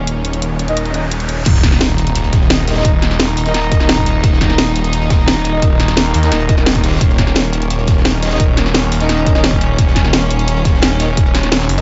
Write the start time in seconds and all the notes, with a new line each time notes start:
Already playing: D#1 D#3 A#3 C#4, riser
0.07 closed hi-hat
0.25 closed hi-hat
0.33 closed hi-hat
0.42 closed hi-hat
0.59 closed hi-hat
0.68 D#4 A#4 D#5, closed hi-hat
0.77 closed hi-hat
0.85 closed hi-hat
0.94 D#4 A#4 D#5, closed hi-hat
1.11 closed hi-hat
1.20 closed hi-hat
1.29 closed hi-hat
1.45 D#1 D#3 A#3 D#4, kick, closed hi-hat, crash, impact
1.55 snare
1.63 kick, snare, closed hi-hat
1.72 snare
1.80 snare, closed hi-hat
1.98 D#1, closed hi-hat
2.07 closed hi-hat
2.15 closed hi-hat
2.24 closed hi-hat
2.33 kick, snare, closed hi-hat
2.41 snare
2.50 snare, closed hi-hat
2.67 D#4 A#4 D#5, snare, closed hi-hat
2.71 snare, closed hi-hat
2.76 D#4 A#4 D#5, snare, closed hi-hat
2.80 snare, closed hi-hat
2.84 D#1, kick, closed hi-hat
3.02 snare, closed hi-hat
3.11 snare
3.19 snare, closed hi-hat
3.37 D#1, closed hi-hat, open hi-hat
3.46 D#4 A#4 D#5, snare, closed hi-hat
3.54 snare, closed hi-hat, open hi-hat
3.63 closed hi-hat
3.72 kick, closed hi-hat
3.80 D#4 A#4 D#5, snare
3.89 snare, closed hi-hat
3.98 kick
4.06 closed hi-hat
4.24 D#1, kick, closed hi-hat
4.33 snare
4.41 kick, snare, closed hi-hat
4.50 snare
4.58 snare, closed hi-hat
4.76 D#1, closed hi-hat
4.84 closed hi-hat
4.93 closed hi-hat
5.02 closed hi-hat
5.10 kick, snare, closed hi-hat
5.19 snare
5.28 snare, closed hi-hat
5.45 D#4 A#4 D#5, closed hi-hat
5.54 D#4 A#4 D#5
5.62 D#1, kick, closed hi-hat
5.79 snare, closed hi-hat
5.88 snare, closed hi-hat
5.97 snare, closed hi-hat
6.14 D#2, closed hi-hat, open hi-hat
6.23 D#4 A#4 D#5, snare, closed hi-hat
6.32 D#1, snare, closed hi-hat, open hi-hat
6.40 closed hi-hat
6.49 kick, closed hi-hat
6.58 D#4 A#4 D#5, snare
6.66 snare, closed hi-hat
6.75 kick, snare, closed hi-hat
6.84 snare, closed hi-hat
6.88 snare, closed hi-hat
6.92 snare, closed hi-hat
6.97 snare, closed hi-hat
7.01 D#1 C#4, kick, closed hi-hat
7.09 snare
7.18 kick, snare, closed hi-hat
7.27 snare
7.35 snare, closed hi-hat
7.53 D#1, closed hi-hat
7.62 closed hi-hat
7.70 closed hi-hat
7.79 closed hi-hat
7.87 kick, snare, closed hi-hat
7.97 snare
8.05 snare, closed hi-hat
8.22 D#4 A#4 D#5, snare, closed hi-hat
8.27 snare, closed hi-hat
8.31 D#4 A#4 D#5, snare, closed hi-hat
8.35 snare, closed hi-hat
8.40 D#1, kick, closed hi-hat
8.57 snare, closed hi-hat
8.65 snare
8.74 snare, closed hi-hat
8.92 D#1, closed hi-hat, open hi-hat
9.00 D#4 A#4 D#5, snare, closed hi-hat
9.09 snare, closed hi-hat, open hi-hat
9.17 closed hi-hat
9.26 kick, closed hi-hat
9.35 D#4 A#4 D#5, snare
9.44 snare, closed hi-hat
9.52 kick
9.61 closed hi-hat
9.78 D#1, kick, closed hi-hat
9.87 snare
9.96 kick, snare, closed hi-hat
10.05 snare
10.13 snare, closed hi-hat
10.30 D#1, closed hi-hat
10.39 closed hi-hat
10.47 closed hi-hat
10.56 closed hi-hat
10.65 kick, snare, closed hi-hat
10.74 snare
10.82 snare, closed hi-hat
11.00 D#4 A#4 D#5, snare, closed hi-hat
11.17 D#1, kick, closed hi-hat
11.26 closed hi-hat
11.34 snare, closed hi-hat
11.43 snare, closed hi-hat
11.52 snare, closed hi-hat
11.60 snare, closed hi-hat
11.69 F#1, open hi-hat
11.78 D#4 A#4 D#5, closed hi-hat